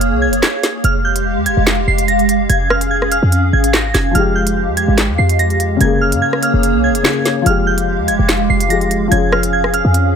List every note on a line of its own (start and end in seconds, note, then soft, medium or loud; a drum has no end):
0.00 0.14 F1 loud
0.00 0.82 A#3 medium
0.00 0.82 G#4 medium
0.00 0.82 C#5 medium
0.00 0.20 F6 medium
0.00 closed hi-hat medium
0.12 0.29 C2 loud
0.22 0.40 G#6 medium
0.27 0.42 F1 loud
0.33 closed hi-hat medium
0.43 0.82 G#6 medium
0.43 snare loud
0.43 clap loud
0.63 snare medium
0.63 closed hi-hat medium
0.84 1.38 F1 loud
0.84 2.48 G#3 medium
0.84 2.48 G4 medium
0.84 5.77 F5 loud
0.84 1.03 F6 medium
0.84 closed hi-hat medium
1.05 1.44 G6 medium
1.16 closed hi-hat medium
1.36 1.48 F2 loud
1.46 1.57 F1 loud
1.46 1.65 G#6 medium
1.46 closed hi-hat medium
1.57 1.79 F1 loud
1.67 snare loud
1.67 clap medium
1.67 closed hi-hat medium
1.78 1.87 E1 loud
1.87 2.47 F1 loud
1.87 2.06 C7 medium
1.98 closed hi-hat medium
2.08 2.27 A#6 medium
2.08 closed hi-hat medium
2.19 closed hi-hat soft
2.29 closed hi-hat medium
2.49 3.20 F1 loud
2.49 4.13 C#4 medium
2.49 4.13 G#4 medium
2.49 2.68 G#6 loud
2.49 closed hi-hat medium
2.70 2.89 F6 medium
2.70 cross-stick loud
2.81 closed hi-hat medium
2.91 3.09 G#6 medium
3.02 cross-stick medium
3.12 3.51 F6 medium
3.12 closed hi-hat medium
3.23 3.52 F2 loud
3.32 closed hi-hat medium
3.53 3.93 G#1 loud
3.53 3.72 G#6 medium
3.64 closed hi-hat medium
3.74 3.92 A#6 medium
3.74 snare loud
3.74 clap loud
3.94 4.14 F1 loud
3.94 4.13 G#6 medium
3.94 snare medium
3.94 closed hi-hat medium
4.11 4.69 F1 loud
4.11 5.75 F3 medium
4.11 5.77 G#3 medium
4.11 5.79 G#3 medium
4.11 5.79 G4 medium
4.11 4.34 F6 loud
4.11 closed hi-hat medium
4.19 5.79 G4 medium
4.36 4.75 G6 medium
4.47 closed hi-hat medium
4.68 4.87 F2 loud
4.77 4.96 G#6 medium
4.77 closed hi-hat medium
4.88 5.10 G#1 loud
4.98 snare loud
4.98 clap medium
4.98 closed hi-hat loud
5.09 5.18 F2 loud
5.18 5.78 F2 loud
5.18 5.37 C7 medium
5.29 closed hi-hat medium
5.39 5.58 A#6 medium
5.39 closed hi-hat medium
5.50 closed hi-hat soft
5.60 closed hi-hat medium
5.77 7.00 C#3 medium
5.77 7.02 A#3 medium
5.77 closed hi-hat medium
5.81 6.14 F1 loud
5.81 7.45 A#3 medium
5.81 7.45 G#4 medium
5.81 7.04 G#4 medium
5.81 7.45 C#5 medium
5.81 5.99 G#6 medium
6.01 6.20 F6 medium
6.12 6.22 G#2 loud
6.12 closed hi-hat medium
6.22 6.41 G#6 medium
6.33 cross-stick medium
6.43 6.82 F6 medium
6.43 closed hi-hat medium
6.54 6.76 F1 loud
6.63 closed hi-hat medium
6.74 6.91 C2 loud
6.84 7.03 G#6 medium
6.90 7.04 F1 loud
6.95 closed hi-hat medium
7.03 7.45 C#3 medium
7.03 7.46 A#3 soft
7.03 7.47 G#4 medium
7.03 7.44 G#6 medium
7.03 snare loud
7.03 clap loud
7.25 snare medium
7.25 closed hi-hat medium
7.42 8.66 F3 medium
7.42 8.68 G#3 medium
7.46 8.00 F1 loud
7.46 9.10 G#3 medium
7.46 9.10 G4 medium
7.46 8.70 G4 medium
7.46 10.16 F5 medium
7.46 7.65 F6 medium
7.46 closed hi-hat medium
7.67 8.06 G6 medium
7.78 closed hi-hat medium
7.98 8.10 F2 loud
8.08 8.19 F1 loud
8.08 8.27 G#6 medium
8.08 closed hi-hat medium
8.19 8.41 F1 loud
8.29 snare loud
8.29 clap medium
8.29 closed hi-hat medium
8.40 8.49 E1 loud
8.50 9.09 F1 loud
8.50 8.68 C7 medium
8.60 closed hi-hat medium
8.68 9.06 F3 medium
8.68 9.12 G#3 soft
8.68 9.13 G4 medium
8.68 8.89 A#6 medium
8.68 closed hi-hat medium
8.81 closed hi-hat soft
8.91 closed hi-hat medium
9.08 9.82 F1 loud
9.08 10.16 F3 medium
9.08 10.16 C#4 medium
9.08 9.30 G#6 loud
9.12 10.16 C#4 medium
9.12 10.16 G#4 medium
9.12 closed hi-hat medium
9.32 9.51 F6 medium
9.32 cross-stick loud
9.43 closed hi-hat medium
9.53 9.72 G#6 medium
9.64 cross-stick medium
9.74 10.13 F6 medium
9.74 closed hi-hat medium
9.85 10.14 F2 loud
9.94 closed hi-hat medium